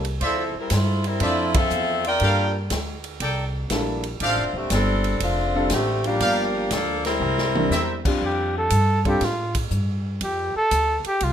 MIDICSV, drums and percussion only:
0, 0, Header, 1, 2, 480
1, 0, Start_track
1, 0, Key_signature, -1, "major"
1, 0, Tempo, 500000
1, 202, Time_signature, 4, 2, 24, 8
1, 10875, End_track
2, 0, Start_track
2, 0, Title_t, "Drums"
2, 44, Note_on_c, 9, 51, 44
2, 140, Note_off_c, 9, 51, 0
2, 200, Note_on_c, 9, 51, 49
2, 202, Note_on_c, 9, 36, 23
2, 296, Note_off_c, 9, 51, 0
2, 298, Note_off_c, 9, 36, 0
2, 671, Note_on_c, 9, 44, 51
2, 671, Note_on_c, 9, 51, 69
2, 676, Note_on_c, 9, 38, 62
2, 679, Note_on_c, 9, 36, 21
2, 767, Note_off_c, 9, 44, 0
2, 767, Note_off_c, 9, 51, 0
2, 772, Note_off_c, 9, 38, 0
2, 775, Note_off_c, 9, 36, 0
2, 999, Note_on_c, 9, 51, 43
2, 1095, Note_off_c, 9, 51, 0
2, 1152, Note_on_c, 9, 51, 55
2, 1159, Note_on_c, 9, 36, 26
2, 1248, Note_off_c, 9, 51, 0
2, 1255, Note_off_c, 9, 36, 0
2, 1482, Note_on_c, 9, 51, 73
2, 1485, Note_on_c, 9, 36, 83
2, 1578, Note_off_c, 9, 51, 0
2, 1581, Note_off_c, 9, 36, 0
2, 1632, Note_on_c, 9, 44, 53
2, 1728, Note_off_c, 9, 44, 0
2, 1963, Note_on_c, 9, 51, 45
2, 2059, Note_off_c, 9, 51, 0
2, 2109, Note_on_c, 9, 51, 53
2, 2119, Note_on_c, 9, 36, 17
2, 2205, Note_off_c, 9, 51, 0
2, 2215, Note_off_c, 9, 36, 0
2, 2593, Note_on_c, 9, 44, 52
2, 2593, Note_on_c, 9, 51, 65
2, 2598, Note_on_c, 9, 38, 64
2, 2599, Note_on_c, 9, 36, 22
2, 2689, Note_off_c, 9, 44, 0
2, 2689, Note_off_c, 9, 51, 0
2, 2694, Note_off_c, 9, 38, 0
2, 2695, Note_off_c, 9, 36, 0
2, 2916, Note_on_c, 9, 51, 43
2, 3012, Note_off_c, 9, 51, 0
2, 3074, Note_on_c, 9, 51, 61
2, 3077, Note_on_c, 9, 36, 22
2, 3170, Note_off_c, 9, 51, 0
2, 3173, Note_off_c, 9, 36, 0
2, 3550, Note_on_c, 9, 44, 58
2, 3550, Note_on_c, 9, 51, 60
2, 3555, Note_on_c, 9, 38, 65
2, 3557, Note_on_c, 9, 36, 22
2, 3646, Note_off_c, 9, 44, 0
2, 3646, Note_off_c, 9, 51, 0
2, 3651, Note_off_c, 9, 38, 0
2, 3653, Note_off_c, 9, 36, 0
2, 3874, Note_on_c, 9, 51, 47
2, 3970, Note_off_c, 9, 51, 0
2, 4033, Note_on_c, 9, 51, 52
2, 4037, Note_on_c, 9, 36, 25
2, 4129, Note_off_c, 9, 51, 0
2, 4133, Note_off_c, 9, 36, 0
2, 4513, Note_on_c, 9, 44, 59
2, 4513, Note_on_c, 9, 51, 63
2, 4517, Note_on_c, 9, 36, 24
2, 4517, Note_on_c, 9, 38, 63
2, 4609, Note_off_c, 9, 44, 0
2, 4609, Note_off_c, 9, 51, 0
2, 4613, Note_off_c, 9, 36, 0
2, 4613, Note_off_c, 9, 38, 0
2, 4840, Note_on_c, 9, 51, 43
2, 4936, Note_off_c, 9, 51, 0
2, 4995, Note_on_c, 9, 51, 63
2, 4998, Note_on_c, 9, 36, 20
2, 5091, Note_off_c, 9, 51, 0
2, 5094, Note_off_c, 9, 36, 0
2, 5469, Note_on_c, 9, 44, 57
2, 5469, Note_on_c, 9, 51, 63
2, 5474, Note_on_c, 9, 38, 61
2, 5477, Note_on_c, 9, 36, 24
2, 5565, Note_off_c, 9, 44, 0
2, 5565, Note_off_c, 9, 51, 0
2, 5570, Note_off_c, 9, 38, 0
2, 5573, Note_off_c, 9, 36, 0
2, 5800, Note_on_c, 9, 51, 43
2, 5896, Note_off_c, 9, 51, 0
2, 5956, Note_on_c, 9, 51, 61
2, 5959, Note_on_c, 9, 36, 24
2, 6052, Note_off_c, 9, 51, 0
2, 6055, Note_off_c, 9, 36, 0
2, 6438, Note_on_c, 9, 44, 57
2, 6438, Note_on_c, 9, 51, 61
2, 6442, Note_on_c, 9, 36, 18
2, 6443, Note_on_c, 9, 38, 67
2, 6534, Note_off_c, 9, 44, 0
2, 6534, Note_off_c, 9, 51, 0
2, 6538, Note_off_c, 9, 36, 0
2, 6539, Note_off_c, 9, 38, 0
2, 6765, Note_on_c, 9, 51, 43
2, 6770, Note_on_c, 9, 38, 48
2, 6861, Note_off_c, 9, 51, 0
2, 6866, Note_off_c, 9, 38, 0
2, 6924, Note_on_c, 9, 43, 45
2, 7020, Note_off_c, 9, 43, 0
2, 7086, Note_on_c, 9, 38, 55
2, 7182, Note_off_c, 9, 38, 0
2, 7250, Note_on_c, 9, 47, 78
2, 7346, Note_off_c, 9, 47, 0
2, 7404, Note_on_c, 9, 44, 49
2, 7409, Note_on_c, 9, 38, 53
2, 7500, Note_off_c, 9, 44, 0
2, 7505, Note_off_c, 9, 38, 0
2, 7730, Note_on_c, 9, 36, 68
2, 7731, Note_on_c, 9, 49, 71
2, 7826, Note_off_c, 9, 36, 0
2, 7827, Note_off_c, 9, 49, 0
2, 7885, Note_on_c, 9, 36, 22
2, 7981, Note_off_c, 9, 36, 0
2, 8356, Note_on_c, 9, 44, 49
2, 8356, Note_on_c, 9, 51, 68
2, 8364, Note_on_c, 9, 36, 17
2, 8452, Note_off_c, 9, 44, 0
2, 8452, Note_off_c, 9, 51, 0
2, 8460, Note_off_c, 9, 36, 0
2, 8689, Note_on_c, 9, 36, 50
2, 8689, Note_on_c, 9, 51, 45
2, 8785, Note_off_c, 9, 36, 0
2, 8785, Note_off_c, 9, 51, 0
2, 8840, Note_on_c, 9, 51, 56
2, 8844, Note_on_c, 9, 36, 25
2, 8845, Note_on_c, 9, 38, 37
2, 8936, Note_off_c, 9, 51, 0
2, 8940, Note_off_c, 9, 36, 0
2, 8941, Note_off_c, 9, 38, 0
2, 9164, Note_on_c, 9, 51, 68
2, 9168, Note_on_c, 9, 36, 55
2, 9260, Note_off_c, 9, 51, 0
2, 9264, Note_off_c, 9, 36, 0
2, 9317, Note_on_c, 9, 44, 52
2, 9323, Note_on_c, 9, 36, 21
2, 9413, Note_off_c, 9, 44, 0
2, 9419, Note_off_c, 9, 36, 0
2, 9799, Note_on_c, 9, 51, 62
2, 9804, Note_on_c, 9, 36, 17
2, 9895, Note_off_c, 9, 51, 0
2, 9900, Note_off_c, 9, 36, 0
2, 10283, Note_on_c, 9, 44, 47
2, 10283, Note_on_c, 9, 51, 62
2, 10286, Note_on_c, 9, 36, 22
2, 10379, Note_off_c, 9, 44, 0
2, 10379, Note_off_c, 9, 51, 0
2, 10382, Note_off_c, 9, 36, 0
2, 10603, Note_on_c, 9, 51, 43
2, 10699, Note_off_c, 9, 51, 0
2, 10757, Note_on_c, 9, 51, 59
2, 10765, Note_on_c, 9, 36, 20
2, 10853, Note_off_c, 9, 51, 0
2, 10861, Note_off_c, 9, 36, 0
2, 10875, End_track
0, 0, End_of_file